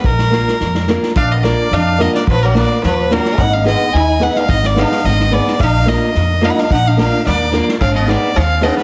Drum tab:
SD |-ooooooo|--o-o-oo|--o-o-oo|--o-o-oo|
BD |o-------|o-------|o-------|o-------|

SD |-ooooo-o|--o-o-oo|--o-o-oo|--o-o-oo|
BD |o-------|o-------|o-------|o-------|